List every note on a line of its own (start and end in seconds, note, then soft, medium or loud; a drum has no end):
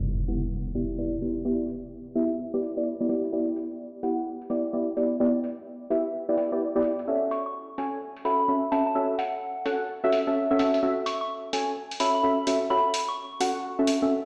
0.00 0.26 B3 medium
0.00 0.26 E4 medium
0.00 0.26 G4 medium
0.00 0.26 D5 medium
0.00 impact medium
0.28 0.48 B3 medium
0.28 0.48 E4 medium
0.28 0.48 G4 medium
0.28 0.48 F#5 medium
0.28 open hi-hat loud
0.66 open hi-hat medium
0.75 0.96 B3 medium
0.75 0.96 E4 medium
0.75 0.96 G4 medium
0.75 0.96 D5 medium
0.75 open hi-hat medium
0.98 1.13 B3 medium
0.98 1.13 E4 medium
0.98 1.13 G4 medium
0.98 1.13 D5 medium
1.22 1.43 B3 medium
1.22 1.43 E4 medium
1.22 1.43 G4 medium
1.22 1.43 D5 medium
1.22 open hi-hat loud
1.45 1.65 B3 medium
1.45 1.65 E4 medium
1.45 1.65 G4 medium
1.45 1.65 D5 loud
1.69 open hi-hat medium
2.15 2.30 B3 medium
2.15 2.30 E4 medium
2.15 2.30 G4 medium
2.15 2.30 E5 loud
2.15 open hi-hat medium
2.54 2.71 B3 medium
2.54 2.71 E4 medium
2.54 2.71 G4 medium
2.54 2.71 D5 loud
2.63 open hi-hat loud
2.77 2.94 B3 medium
2.77 2.94 E4 medium
2.77 2.94 G4 medium
2.77 2.94 D5 medium
3.00 3.08 B3 medium
3.00 3.08 E4 medium
3.00 3.08 G4 medium
3.00 3.08 D5 loud
3.09 3.31 B3 medium
3.09 3.31 E4 medium
3.09 3.31 G4 medium
3.09 3.31 D5 loud
3.09 open hi-hat loud
3.24 open hi-hat medium
3.33 4.01 B3 medium
3.33 4.01 E4 medium
3.33 4.01 G4 medium
3.33 4.01 D5 medium
3.56 open hi-hat medium
4.03 4.23 B3 medium
4.03 4.23 E4 medium
4.03 4.23 G4 medium
4.03 4.23 F#5 medium
4.03 open hi-hat medium
4.42 open hi-hat medium
4.50 4.71 B3 medium
4.50 4.71 E4 medium
4.50 4.71 G4 medium
4.50 4.71 D5 medium
4.50 open hi-hat medium
4.73 4.88 B3 medium
4.73 4.88 E4 medium
4.73 4.88 G4 medium
4.73 4.88 D5 medium
4.97 5.18 B3 medium
4.97 5.18 E4 medium
4.97 5.18 G4 medium
4.97 5.18 D5 medium
4.97 open hi-hat loud
5.20 5.40 B3 medium
5.20 5.40 E4 medium
5.20 5.40 G4 medium
5.20 5.40 D5 loud
5.44 open hi-hat medium
5.90 6.05 B3 medium
5.90 6.05 E4 medium
5.90 6.05 G4 medium
5.90 6.05 E5 loud
5.90 open hi-hat medium
6.29 6.36 B3 loud
6.29 6.36 E4 medium
6.29 6.36 G4 medium
6.29 6.36 D5 loud
6.37 6.50 B3 medium
6.37 6.50 E4 medium
6.37 6.50 G4 medium
6.37 6.50 D5 medium
6.37 open hi-hat medium
6.52 6.61 B3 medium
6.52 6.61 E4 medium
6.52 6.61 G4 medium
6.52 6.61 D5 loud
6.76 6.83 B3 loud
6.76 6.83 E4 medium
6.76 6.83 G4 medium
6.76 6.83 D5 loud
6.84 open hi-hat medium
6.99 open hi-hat medium
7.08 7.76 C#4 medium
7.08 7.76 F#4 medium
7.08 7.76 A4 medium
7.08 7.76 E5 medium
7.31 7.41 C#6 medium
7.31 open hi-hat medium
7.46 7.52 C#6 medium
7.78 7.98 C#4 medium
7.78 7.98 F#4 medium
7.78 7.98 A4 medium
7.78 7.98 G#5 medium
7.78 open hi-hat medium
8.16 open hi-hat medium
8.25 8.46 C#4 medium
8.25 8.46 F#4 medium
8.25 8.46 A4 medium
8.25 8.46 E5 medium
8.25 8.35 B5 medium
8.25 open hi-hat medium
8.40 8.45 B5 medium
8.48 8.63 C#4 medium
8.48 8.63 F#4 medium
8.48 8.63 A4 medium
8.48 8.63 E5 medium
8.72 8.93 C#4 medium
8.72 8.93 F#4 medium
8.72 8.93 A4 medium
8.72 8.93 E5 medium
8.72 8.81 A5 medium
8.72 open hi-hat loud
8.87 8.92 A5 medium
8.95 9.15 C#4 medium
8.95 9.15 F#4 medium
8.95 9.15 A4 medium
8.95 9.15 E5 loud
9.19 9.65 F#5 medium
9.19 open hi-hat medium
9.65 9.80 C#4 loud
9.65 9.80 F#4 medium
9.65 9.80 A4 medium
9.65 9.80 F#5 loud
9.65 open hi-hat loud
10.04 10.21 C#4 loud
10.04 10.21 F#4 medium
10.04 10.21 A4 medium
10.04 10.21 E5 loud
10.12 open hi-hat medium
10.27 10.44 C#4 medium
10.27 10.44 F#4 medium
10.27 10.44 A4 medium
10.27 10.44 E5 medium
10.51 10.58 C#4 medium
10.51 10.58 F#4 medium
10.51 10.58 A4 medium
10.51 10.58 E5 loud
10.59 10.81 C#4 medium
10.59 10.81 F#4 medium
10.59 10.81 A4 medium
10.59 10.81 E5 loud
10.59 open hi-hat loud
10.74 open hi-hat medium
10.83 11.51 C#4 medium
10.83 11.51 F#4 medium
10.83 11.51 A4 medium
10.83 11.51 E5 medium
11.06 11.16 C#6 medium
11.06 open hi-hat medium
11.21 11.27 C#6 medium
11.53 11.73 C#4 medium
11.53 11.73 F#4 medium
11.53 11.73 A4 medium
11.53 11.73 G#5 medium
11.53 open hi-hat loud
11.91 open hi-hat medium
12.00 12.21 C#4 medium
12.00 12.21 F#4 medium
12.00 12.21 A4 medium
12.00 12.21 E5 medium
12.00 12.10 B5 medium
12.00 open hi-hat medium
12.15 12.20 B5 medium
12.23 12.38 C#4 medium
12.23 12.38 F#4 medium
12.23 12.38 A4 medium
12.23 12.38 E5 medium
12.47 12.68 C#4 medium
12.47 12.68 F#4 medium
12.47 12.68 A4 medium
12.47 12.68 E5 medium
12.47 open hi-hat loud
12.70 12.90 C#4 medium
12.70 12.90 F#4 medium
12.70 12.90 A4 medium
12.70 12.90 E5 medium
12.70 12.87 B5 medium
12.94 open hi-hat loud
13.08 13.73 C#6 medium
13.40 13.55 C#4 medium
13.40 13.55 F#4 medium
13.40 13.55 A4 medium
13.40 13.55 F#5 loud
13.40 open hi-hat loud
13.79 13.96 C#4 loud
13.79 13.96 F#4 medium
13.79 13.96 A4 medium
13.79 13.96 E5 loud
13.87 open hi-hat medium
14.02 14.19 C#4 medium
14.02 14.19 F#4 medium
14.02 14.19 A4 medium
14.02 14.19 E5 medium